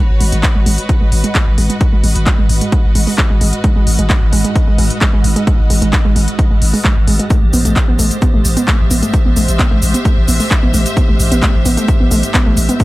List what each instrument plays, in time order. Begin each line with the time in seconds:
Already playing: synth drone G#2 G#3, string section F#4 B4 C#5
0.09 808-style bass G#1
0.20 808-style bass G#1, synth arpeggio sound G#3, open hi-hat
0.25 string section D#5
0.32 808-style bass G#1, synth arpeggio sound G#3, closed hi-hat
0.43 kick, clap, closed hi-hat
0.55 808-style bass G#1, synth arpeggio sound G#3
0.66 808-style bass G#1, synth arpeggio sound G#3, open hi-hat
0.78 closed hi-hat
0.89 synth arpeggio sound G#3, kick, closed hi-hat
1.01 808-style bass G#1, synth arpeggio sound G#3
1.12 808-style bass G#1, open hi-hat
1.24 synth arpeggio sound G#3, closed hi-hat
1.35 synth arpeggio sound G#3, kick, clap, closed hi-hat
1.47 808-style bass G#1
1.58 808-style bass G#1, synth arpeggio sound G#3, open hi-hat
1.70 synth arpeggio sound G#3, closed hi-hat
1.81 kick, closed hi-hat
1.93 808-style bass G#1, synth arpeggio sound G#3
2.04 808-style bass G#1, synth arpeggio sound G#3, open hi-hat
2.16 808-style bass G#1, closed hi-hat
2.27 synth arpeggio sound G#3, kick, clap, closed hi-hat
2.38 808-style bass G#1, synth arpeggio sound G#3
2.49 808-style bass G#1, open hi-hat
2.61 synth arpeggio sound G#3, closed hi-hat
2.72 synth arpeggio sound G#3, kick, closed hi-hat
2.84 808-style bass G#1
2.95 808-style bass G#1, synth arpeggio sound G#3, open hi-hat
3.07 synth arpeggio sound G#3, open hi-hat
3.18 kick, clap, closed hi-hat
3.30 808-style bass G#1, synth arpeggio sound G#3
3.41 808-style bass G#1, synth arpeggio sound G#3, open hi-hat
3.53 closed hi-hat
3.64 synth arpeggio sound G#3, kick, closed hi-hat
3.76 808-style bass G#1, synth arpeggio sound G#3
3.87 808-style bass G#1, open hi-hat
3.99 808-style bass G#1, synth arpeggio sound G#3, closed hi-hat
4.10 synth arpeggio sound G#3, kick, clap, closed hi-hat
4.22 808-style bass G#1
4.33 808-style bass G#1, synth arpeggio sound G#3, open hi-hat
4.45 synth arpeggio sound G#3, closed hi-hat
4.56 kick, closed hi-hat
4.67 808-style bass G#1, synth arpeggio sound G#3
4.78 808-style bass G#1, synth arpeggio sound G#3, open hi-hat
4.90 closed hi-hat
5.01 synth arpeggio sound G#3, kick, clap, closed hi-hat
5.13 808-style bass G#1, synth arpeggio sound G#3
5.24 808-style bass G#1, open hi-hat
5.36 synth arpeggio sound G#3, closed hi-hat
5.47 synth arpeggio sound G#3, kick, closed hi-hat
5.59 808-style bass G#1
5.70 808-style bass G#1, synth arpeggio sound G#3, open hi-hat
5.82 808-style bass G#1, synth arpeggio sound G#3, closed hi-hat
5.93 kick, clap, closed hi-hat
6.05 808-style bass G#1, synth arpeggio sound G#3
6.16 808-style bass G#1, synth arpeggio sound G#3, open hi-hat
6.28 closed hi-hat
6.39 synth arpeggio sound G#3, kick, closed hi-hat
6.51 808-style bass G#1, synth arpeggio sound G#3
6.62 808-style bass G#1, open hi-hat
6.74 synth arpeggio sound G#3, open hi-hat
6.85 synth arpeggio sound G#3, kick, clap, closed hi-hat
6.96 808-style bass G#1
7.07 808-style bass G#1, synth arpeggio sound G#3, open hi-hat
7.19 synth arpeggio sound G#3, closed hi-hat
7.30 synth arpeggio sound A3, string section G4, kick, closed hi-hat, shaker
7.42 808-style bass A1
7.52 808-style bass A1, synth arpeggio sound B3, string section C5, open hi-hat, shaker
7.65 808-style bass A1, synth arpeggio sound A3, closed hi-hat, shaker
7.76 kick, clap, closed hi-hat, shaker
7.88 808-style bass A1, synth arpeggio sound B3
7.99 808-style bass A1, synth arpeggio sound A3, open hi-hat, shaker
8.11 closed hi-hat, shaker
8.22 synth arpeggio sound B3, kick, closed hi-hat, shaker
8.34 808-style bass A1, synth arpeggio sound A3
8.45 808-style bass A1, open hi-hat, shaker
8.57 synth arpeggio sound B3, closed hi-hat, shaker
8.68 synth arpeggio sound A3, string section E5, kick, clap, closed hi-hat, shaker
8.80 808-style bass A1
8.91 808-style bass A1, synth arpeggio sound B3, open hi-hat, shaker
9.03 synth arpeggio sound A3, closed hi-hat, shaker
9.14 kick, closed hi-hat, shaker
9.26 808-style bass A1, synth arpeggio sound B3
9.36 808-style bass A1, synth arpeggio sound A3, open hi-hat, shaker
9.48 808-style bass A1, closed hi-hat, shaker
9.59 synth arpeggio sound B3, kick, clap, closed hi-hat, shaker
9.71 808-style bass A1, synth arpeggio sound A3
9.82 808-style bass A1, open hi-hat, shaker
9.94 synth arpeggio sound B3, closed hi-hat, shaker
10.05 synth arpeggio sound A3, kick, closed hi-hat, shaker
10.17 808-style bass A1
10.28 808-style bass A1, synth arpeggio sound B3, open hi-hat, shaker
10.40 synth arpeggio sound A3, open hi-hat, shaker
10.51 kick, clap, shaker
10.63 808-style bass A1, synth arpeggio sound B3
10.74 808-style bass A1, synth arpeggio sound A3, open hi-hat, shaker
10.86 closed hi-hat, shaker
10.97 synth arpeggio sound B3, kick, closed hi-hat, shaker
11.09 808-style bass A1, synth arpeggio sound A3
11.20 808-style bass A1, open hi-hat, shaker
11.32 808-style bass A1, synth arpeggio sound B3, closed hi-hat, shaker
11.43 synth arpeggio sound A3, kick, clap, closed hi-hat, shaker
11.54 808-style bass A1
11.65 808-style bass A1, synth arpeggio sound B3, open hi-hat, shaker
11.77 synth arpeggio sound A3, closed hi-hat, shaker
11.88 kick, closed hi-hat, shaker
12.00 808-style bass A1, synth arpeggio sound B3
12.11 808-style bass A1, synth arpeggio sound A3, open hi-hat, shaker
12.23 closed hi-hat, shaker
12.34 synth arpeggio sound B3, kick, clap, closed hi-hat, shaker
12.46 808-style bass A1, synth arpeggio sound A3
12.57 808-style bass A1, open hi-hat, shaker
12.69 synth arpeggio sound B3, closed hi-hat, shaker
12.80 synth arpeggio sound A3, kick, closed hi-hat, shaker